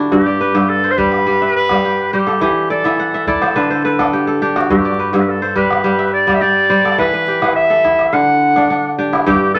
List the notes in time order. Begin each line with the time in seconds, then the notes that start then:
Already playing: D3 D4 E4 F#4 G4 A4 B4
0.11 G2 G4, calabash thump, calabash click
0.26 D5
0.41 B4
0.55 G2, calabash click
0.70 A4
0.84 C5
0.91 C5
0.98 G3 B4, calabash thump
1.12 calabash click
1.26 G3, calabash click
1.42 E5
1.56 B4
1.69 G3, calabash thump, calabash click
1.85 G4
2.13 G3 G4 C5
2.27 A4, calabash click
2.41 E3 G4, calabash thump, calabash click
2.70 A4 D5
2.84 E3 E5, calabash click
2.99 F#5
3.14 E5
3.27 E4 A4 D5, calabash thump
3.42 C5, calabash click
3.56 D3 B4, calabash click
3.70 C5
3.85 B4
3.99 D4 A4, calabash thump, calabash click
4.13 G4
4.27 A4
4.42 D4 G4
4.56 F#4, calabash click
4.70 G2 G4, calabash thump, calabash click
4.85 D5
4.99 B4
5.13 G2, calabash click
5.21 B4
5.29 A4
5.42 C5
5.56 G3 B4, calabash thump
5.71 calabash click
5.84 G3, calabash click
5.99 E5
6.14 D5
6.27 G3, calabash thump, calabash click
6.35 E5
6.41 G4 D5
6.70 G3 C5
6.84 A4, calabash click
6.98 E3 B4, calabash thump, calabash click
7.13 B4, calabash click
7.28 G4
7.42 E3, calabash click
7.56 E5, calabash click
7.70 A4, calabash click
7.84 E4, calabash thump, calabash click
7.99 calabash click
8.13 D3 F#5
8.56 D4, calabash thump, calabash click
8.70 D4, calabash click
8.85 calabash click
8.98 D4 G4
9.13 E4, calabash click
9.27 G2 G4, calabash thump
9.55 A4 B4